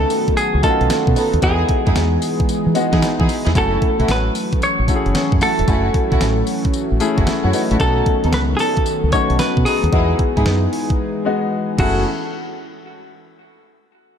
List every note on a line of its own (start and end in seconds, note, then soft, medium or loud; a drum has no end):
0.00 1.41 D#3 medium
0.00 1.38 F#3 medium
0.00 0.31 A3 medium
0.00 1.38 A3 medium
0.00 3.51 B3 medium
0.00 0.31 C#4 medium
0.00 0.31 D#4 medium
0.00 0.31 F#4 medium
0.00 1.39 F#4 medium
0.00 0.34 A4 loud
0.10 open hi-hat medium
0.10 tambourine medium
0.28 kick medium
0.28 closed hi-hat medium
0.37 0.63 G#4 loud
0.37 closed hi-hat medium
0.37 tambourine medium
0.55 0.61 C#2 medium
0.62 1.38 A3 medium
0.62 1.38 C#4 medium
0.62 1.39 D#4 medium
0.62 0.72 F4 medium
0.62 1.39 A4 loud
0.62 kick loud
0.62 closed hi-hat medium
0.62 tambourine medium
0.70 1.42 F#4 medium
0.81 0.88 B1 loud
0.81 closed hi-hat soft
0.90 snare loud
0.90 closed hi-hat medium
0.90 tambourine loud
1.07 1.14 B2 loud
1.07 kick loud
1.16 1.32 B3 medium
1.16 1.33 D#4 medium
1.16 1.33 A4 medium
1.16 open hi-hat medium
1.16 tambourine medium
1.34 1.41 D#2 loud
1.34 closed hi-hat medium
1.42 1.63 E2 loud
1.42 3.53 E3 medium
1.42 2.43 G#3 medium
1.42 3.53 G#3 medium
1.42 2.43 B3 medium
1.42 1.59 D#4 loud
1.42 3.53 D#4 medium
1.42 2.43 D#4 medium
1.42 1.59 E4 medium
1.42 2.43 F#4 medium
1.42 3.53 G#4 medium
1.42 1.59 G#4 loud
1.42 2.99 G#4 loud
1.42 kick loud
1.42 closed hi-hat medium
1.42 tambourine medium
1.69 kick loud
1.69 closed hi-hat medium
1.86 1.94 F#2 medium
1.86 1.95 D#4 medium
1.86 1.95 E4 medium
1.86 1.95 G#4 medium
1.86 kick medium
1.86 closed hi-hat medium
1.96 2.16 E2 medium
1.96 snare loud
1.96 closed hi-hat medium
1.96 tambourine medium
2.22 open hi-hat medium
2.22 tambourine medium
2.40 kick medium
2.40 closed hi-hat medium
2.49 closed hi-hat medium
2.49 tambourine medium
2.66 2.73 E3 medium
2.75 3.51 G#3 medium
2.75 3.51 B3 medium
2.75 3.51 D#4 medium
2.75 3.51 F#4 loud
2.75 closed hi-hat medium
2.75 tambourine medium
2.92 3.00 E3 loud
2.92 3.01 D#4 medium
2.92 3.01 E4 medium
2.92 3.02 G#4 medium
2.92 kick medium
2.92 snare medium
2.92 closed hi-hat soft
3.02 snare loud
3.02 closed hi-hat medium
3.02 tambourine loud
3.19 3.27 E3 loud
3.19 3.28 D#4 medium
3.19 3.28 E4 medium
3.19 3.28 G#4 medium
3.19 kick loud
3.29 open hi-hat medium
3.29 tambourine medium
3.45 3.53 E2 medium
3.45 3.54 D#4 medium
3.45 3.54 E4 medium
3.45 3.54 G#4 medium
3.45 snare medium
3.45 closed hi-hat medium
3.54 3.76 F#1 loud
3.54 7.76 E3 medium
3.54 7.76 F#3 medium
3.54 3.71 A3 medium
3.54 9.88 A3 medium
3.54 4.56 A3 medium
3.54 7.76 C#4 medium
3.54 4.56 C#4 medium
3.54 3.71 E4 medium
3.54 4.56 E4 medium
3.54 9.88 F#4 medium
3.54 3.71 F#4 loud
3.54 4.11 A4 loud
3.54 4.56 G#5 medium
3.54 kick loud
3.54 closed hi-hat medium
3.54 tambourine medium
3.82 kick loud
3.82 closed hi-hat medium
3.99 4.06 B1 loud
3.99 4.07 A3 medium
3.99 4.08 E4 medium
3.99 4.08 F#4 medium
3.99 closed hi-hat soft
4.08 4.29 A1 medium
4.08 4.59 B4 loud
4.08 snare loud
4.08 closed hi-hat medium
4.08 tambourine medium
4.35 open hi-hat medium
4.35 tambourine medium
4.53 kick medium
4.53 closed hi-hat medium
4.62 5.38 C#5 loud
4.62 closed hi-hat medium
4.62 tambourine medium
4.79 4.86 A1 medium
4.88 5.63 A3 medium
4.88 5.64 C#4 medium
4.88 5.64 E4 medium
4.88 4.97 F#4 medium
4.88 kick loud
4.88 closed hi-hat medium
4.88 tambourine medium
4.95 5.67 G#4 medium
5.06 5.13 F#1 medium
5.06 closed hi-hat medium
5.15 snare loud
5.15 closed hi-hat medium
5.15 tambourine loud
5.32 5.39 F#2 medium
5.32 kick loud
5.41 5.57 A3 medium
5.41 5.57 E4 medium
5.41 5.57 F#4 medium
5.41 6.44 A4 medium
5.41 open hi-hat medium
5.41 tambourine medium
5.59 5.66 E1 medium
5.59 closed hi-hat medium
5.67 5.88 F#1 loud
5.67 5.84 A3 loud
5.67 6.68 A3 medium
5.67 6.68 C#4 medium
5.67 5.84 E4 medium
5.67 6.68 E4 medium
5.67 5.84 F#4 loud
5.67 6.69 G#5 medium
5.67 kick loud
5.67 closed hi-hat medium
5.67 tambourine medium
5.94 kick loud
5.94 closed hi-hat medium
6.11 6.19 B1 loud
6.11 6.20 A3 medium
6.11 6.20 E4 medium
6.11 6.20 F#4 medium
6.11 kick medium
6.11 closed hi-hat soft
6.21 6.41 A1 medium
6.21 snare loud
6.21 closed hi-hat medium
6.21 tambourine loud
6.47 open hi-hat medium
6.47 tambourine medium
6.65 kick medium
6.65 closed hi-hat medium
6.74 closed hi-hat medium
6.74 tambourine medium
6.92 6.98 A1 medium
7.00 7.76 A3 medium
7.00 7.26 C#4 medium
7.00 7.27 E4 medium
7.00 7.27 G#4 loud
7.00 closed hi-hat medium
7.00 tambourine medium
7.17 7.25 F#1 medium
7.17 7.26 A3 medium
7.17 7.26 E4 medium
7.17 7.26 F#4 medium
7.17 kick medium
7.17 closed hi-hat soft
7.27 7.44 C#4 medium
7.27 7.44 A4 medium
7.27 snare loud
7.27 closed hi-hat medium
7.27 tambourine loud
7.44 7.51 F#2 medium
7.44 7.53 A3 medium
7.44 7.53 E4 medium
7.44 7.53 F#4 medium
7.44 7.53 C#5 medium
7.53 7.70 D#4 medium
7.53 7.70 B4 medium
7.53 open hi-hat medium
7.53 tambourine medium
7.71 7.78 A1 medium
7.71 7.79 A3 medium
7.71 7.78 C#4 medium
7.71 7.79 E4 medium
7.71 7.80 F#4 medium
7.71 7.96 A4 medium
7.71 closed hi-hat medium
7.80 8.00 B1 loud
7.80 9.91 D#3 medium
7.80 9.91 F#3 medium
7.80 8.80 A3 medium
7.80 7.96 B3 loud
7.80 11.74 B3 medium
7.80 8.80 C#4 medium
7.80 7.96 D#4 medium
7.80 8.81 D#4 medium
7.80 8.81 F#4 medium
7.80 7.96 A4 loud
7.80 8.30 A4 loud
7.80 kick loud
7.80 closed hi-hat medium
7.80 tambourine medium
8.06 kick loud
8.06 closed hi-hat medium
8.24 8.31 D#2 medium
8.24 8.33 B3 medium
8.24 8.33 D#4 medium
8.24 8.33 A4 medium
8.24 closed hi-hat medium
8.33 8.53 C#2 medium
8.33 8.40 B4 loud
8.33 snare loud
8.33 closed hi-hat medium
8.33 tambourine medium
8.57 8.60 G#4 medium
8.57 9.09 A4 loud
8.57 open hi-hat medium
8.57 tambourine medium
8.77 kick medium
8.77 closed hi-hat medium
8.86 closed hi-hat medium
8.86 tambourine medium
9.04 9.11 C#2 medium
9.12 9.88 A3 medium
9.12 9.88 C#4 medium
9.12 9.89 D#4 medium
9.12 9.89 F#4 medium
9.12 9.39 C#5 loud
9.12 kick medium
9.12 closed hi-hat medium
9.12 tambourine medium
9.30 9.37 B1 medium
9.30 closed hi-hat medium
9.39 9.64 B4 medium
9.39 snare loud
9.39 closed hi-hat medium
9.39 tambourine medium
9.57 9.64 B2 medium
9.57 kick medium
9.65 9.82 B3 medium
9.65 9.82 D#4 medium
9.65 11.47 G#4 medium
9.65 9.82 A4 medium
9.65 open hi-hat medium
9.65 tambourine medium
9.83 9.90 D#2 loud
9.83 closed hi-hat medium
9.92 10.13 E2 loud
9.92 11.76 E3 medium
9.92 10.93 G#3 medium
9.92 11.77 G#3 medium
9.92 10.93 B3 medium
9.92 10.09 D#4 medium
9.92 11.77 D#4 medium
9.92 10.93 D#4 medium
9.92 10.09 E4 medium
9.92 10.93 F#4 medium
9.92 11.77 G#4 medium
9.92 10.09 G#4 loud
9.92 kick loud
9.92 closed hi-hat medium
10.19 kick medium
10.19 closed hi-hat medium
10.36 10.44 G#2 medium
10.36 10.45 D#4 medium
10.36 10.45 E4 medium
10.36 10.45 G#4 medium
10.36 kick medium
10.36 closed hi-hat soft
10.46 10.66 F#2 medium
10.46 snare loud
10.46 closed hi-hat medium
10.73 open hi-hat medium
10.90 kick medium
10.90 closed hi-hat medium
11.25 11.78 G#3 medium
11.25 11.79 B3 medium
11.25 11.79 D#4 medium
11.25 11.79 F#4 loud
11.78 12.03 F#1 loud
11.78 12.03 E3 medium
11.78 12.03 A3 medium
11.78 12.03 C#4 medium
11.78 11.99 E4 medium
11.78 12.03 E4 medium
11.78 12.00 F#4 medium
11.78 12.03 F#4 medium
11.78 12.04 F#4 medium
11.78 12.03 G#4 medium
11.78 12.03 A4 medium
11.78 12.00 A4 medium
11.78 kick loud
11.78 crash medium